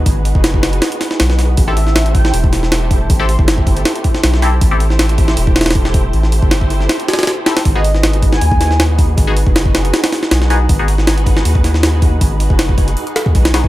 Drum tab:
HH |o---o---o---o-x-o-x-o---o---o---|o---o---o-x-o---o---o---o---o---|o---o---o---o-x-o-x-o---o---o---|o---o---o-x-o---o---ooooo---o---|
SD |--------o---o---o---o-o-o-o-o---|------o-o-----o-----o-o-o-------|--------o-------o-----o-o-o-o---|------o-o-----o-----oooo--o-----|
BD |o-----o---o---------------------|o-----------o-----o---------o---|o-----o---o-o-------o-----------|o-----------o-----o-----o---o---|

HH |o---o---o---o---o-x-ooooo---o-o-|o---o---o-x-o---o---o---o---o---|o---o---o---o-x-o-o-o---o---o---|o---o---o-x-o---o---o---o---o---|
SD |--o-----o-----o-o---ooooo---o-o-|------o-o-----o-----o-o-o-------|--------o---o---o-o-o-o-o-o-o---|------o-o-----o-----o-o-o-------|
BD |------o---o---------------------|o-----------o-----o---------o---|o-----o---o---------------------|o-----------o-----o---------o---|

HH |o---o---o---o-x-o-x-o---o-o-o---|
SD |--------o-----------o-----o-o---|
BD |o-----o---o-o---------o-o-----o-|